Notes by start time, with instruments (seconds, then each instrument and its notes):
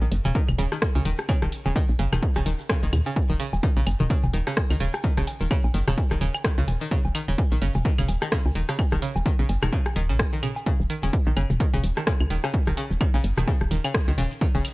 0.01 fm bass A#1, synth pluck D#3, shaker
0.12 fm bass F#1, open hi-hat
0.25 fm bass D#1, synth pluck C#3, mid tom, low woodblock, shaker
0.35 synth pluck D#3, kick, shaker
0.48 fm bass D#1, mid tom, claves, shaker
0.58 fm bass D#1, synth pluck C#3, open hi-hat, low woodblock
0.72 synth pluck D#3, cross-stick, shaker
0.82 kick, cross-stick, shaker
0.95 fm bass C#2, synth pluck C#3, low woodblock, shaker
1.05 fm bass D#1, synth pluck D#3, open hi-hat
1.19 cross-stick, shaker
1.28 synth pluck C#3, kick, claves, low woodblock, shaker
1.42 fm bass D#1, synth pluck D#3, cross-stick, shaker
1.52 open hi-hat
1.65 fm bass D#1, synth pluck C#3, low woodblock, shaker
1.76 synth pluck D#3, kick, shaker
1.89 fm bass A#1, shaker
1.99 fm bass F#1, synth pluck C#3, open hi-hat, low woodblock
2.12 fm bass D#1, synth pluck D#3, cross-stick, mid tom, claves, shaker
2.22 kick, shaker
2.36 fm bass D#1, synth pluck C#3, cross-stick, low woodblock, shaker
2.46 fm bass D#1, synth pluck D#3, open hi-hat
2.59 shaker
2.69 synth pluck C#3, kick, cross-stick, low woodblock, shaker
2.83 fm bass F1, synth pluck D#3, shaker
2.93 fm bass D#2, open hi-hat, mid tom, claves
3.06 synth pluck C#3, low woodblock, shaker
3.16 kick, low woodblock, shaker
3.30 fm bass D#1, synth pluck D#3, shaker
3.40 synth pluck C#3, open hi-hat
3.53 fm bass D#1, low woodblock, shaker
3.63 synth pluck D#3, kick, shaker
3.77 fm bass A#1, synth pluck C#3, shaker
3.87 fm bass F#1, open hi-hat, claves, low woodblock
4.00 fm bass D#1, synth pluck D#3, mid tom, shaker
4.10 synth pluck C#3, kick, shaker
4.23 fm bass D#1, mid tom, low woodblock, shaker
4.33 fm bass D#1, synth pluck D#3, open hi-hat
4.47 synth pluck C#3, cross-stick, shaker
4.56 kick, cross-stick, low woodblock, shaker
4.70 fm bass C#2, synth pluck D#3, claves, shaker
4.80 fm bass D#1, synth pluck C#3, open hi-hat
4.94 cross-stick, low woodblock, shaker
5.03 synth pluck D#3, kick, shaker
5.17 fm bass D#1, synth pluck C#3, cross-stick, shaker
5.27 open hi-hat, low woodblock
5.41 fm bass D#1, synth pluck D#3, shaker
5.50 synth pluck C#3, kick, claves, shaker
5.64 fm bass A#1, low woodblock, shaker
5.74 fm bass F#1, synth pluck D#3, open hi-hat
5.87 fm bass D#1, synth pluck C#3, cross-stick, mid tom, shaker
5.98 kick, low woodblock, shaker
6.11 fm bass D#1, synth pluck D#3, cross-stick, shaker
6.21 fm bass D#1, synth pluck C#3, open hi-hat
6.34 claves, low woodblock, shaker
6.44 synth pluck D#3, kick, cross-stick, shaker
6.57 fm bass C#2, synth pluck C#3, shaker
6.68 fm bass D#1, open hi-hat, mid tom, low woodblock
6.81 synth pluck D#3, shaker
6.91 synth pluck C#3, kick, shaker
7.04 fm bass D#1, low woodblock, shaker
7.15 synth pluck D#3, open hi-hat, claves
7.28 fm bass D#1, synth pluck C#3, shaker
7.38 kick, low woodblock, shaker
7.51 fm bass A#1, synth pluck D#3, shaker
7.62 fm bass F#1, synth pluck C#3, open hi-hat
7.75 fm bass D#1, mid tom, low woodblock, shaker
7.85 synth pluck D#3, kick, shaker
7.98 fm bass D#1, synth pluck C#3, mid tom, claves, shaker
8.09 fm bass D#1, open hi-hat, low woodblock
8.22 synth pluck D#3, cross-stick, shaker
8.32 synth pluck C#3, kick, cross-stick, shaker
8.45 fm bass C#2, low woodblock, shaker
8.55 fm bass D#1, synth pluck D#3, open hi-hat
8.69 synth pluck C#3, cross-stick, shaker
8.79 kick, claves, low woodblock, shaker
8.92 fm bass D#1, synth pluck D#3, cross-stick, shaker
9.02 synth pluck C#3, open hi-hat
9.16 fm bass D#1, low woodblock, shaker
9.26 synth pluck D#3, kick, shaker
9.39 fm bass A#1, synth pluck C#3, shaker
9.49 fm bass F#1, open hi-hat, low woodblock
9.63 fm bass D#1, synth pluck D#3, cross-stick, mid tom, claves, shaker
9.73 synth pluck C#3, kick, shaker
9.85 cross-stick, low woodblock, shaker
9.96 fm bass D#1, synth pluck D#3, open hi-hat
10.09 fm bass A#1, synth pluck C#3, shaker
10.19 kick, cross-stick, low woodblock, shaker
10.32 synth pluck D#3, shaker
10.43 synth pluck C#3, open hi-hat, mid tom, claves
10.56 low woodblock, shaker
10.66 synth pluck C#3, kick, low woodblock, shaker
10.80 fm bass D#1, shaker
10.90 synth pluck D#3, open hi-hat
11.03 fm bass D#1, synth pluck C#3, low woodblock, shaker
11.13 kick, shaker
11.27 fm bass A#1, synth pluck D#3, shaker
11.37 fm bass F#1, synth pluck C#3, open hi-hat, claves, low woodblock
11.50 fm bass D#1, mid tom, shaker
11.60 synth pluck D#3, kick, shaker
11.73 fm bass D#1, synth pluck C#3, mid tom, low woodblock, shaker
11.83 fm bass D#1, open hi-hat
11.97 synth pluck D#3, cross-stick, shaker
12.07 synth pluck C#3, kick, cross-stick, low woodblock, shaker
12.20 fm bass C#2, claves, shaker
12.30 fm bass D#1, synth pluck D#3, open hi-hat
12.44 synth pluck C#3, cross-stick, low woodblock, shaker
12.53 kick, shaker
12.67 fm bass D#1, synth pluck D#3, cross-stick, shaker
12.77 synth pluck C#3, open hi-hat, low woodblock
12.91 fm bass D#1, shaker
13.01 synth pluck D#3, kick, claves, shaker
13.14 fm bass A#1, synth pluck C#3, low woodblock, shaker
13.24 fm bass F#1, open hi-hat
13.37 fm bass D#1, synth pluck D#3, cross-stick, mid tom, shaker
13.48 synth pluck C#3, kick, low woodblock, shaker
13.61 fm bass D#1, cross-stick, shaker
13.71 fm bass D#1, synth pluck D#3, open hi-hat
13.84 synth pluck C#3, claves, low woodblock, shaker
13.94 kick, cross-stick, shaker
14.08 fm bass C#2, synth pluck D#3, shaker
14.18 fm bass D#1, synth pluck C#3, open hi-hat, mid tom, low woodblock
14.31 shaker
14.41 synth pluck D#3, kick, shaker
14.55 fm bass D#1, synth pluck C#3, low woodblock, shaker
14.65 open hi-hat, claves